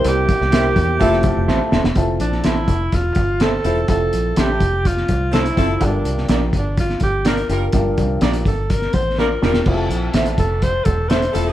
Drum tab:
CC |----------------|----------------|----------------|----------------|
HH |x-x-x-x-x-x-----|x-x-x-x-x-x-x-x-|x-x-x-x-x-x-xxx-|x-x-x-x-x-x-xxx-|
SD |---oo----o--o-oo|---oo-------o---|----o----o--o---|---oo----o--o---|
BD |--o---o-o-o-----|o-----o-o-o-----|o-----o-o-o---o-|o-----o-o-o-----|

CC |----------------|x---------------|
HH |x-x-xxx-x-x-----|--x-xxx-x-x-xxx-|
SD |----o----o--o-oo|----o-------o---|
BD |o-o---o-o-o-----|o-----o-o-o-----|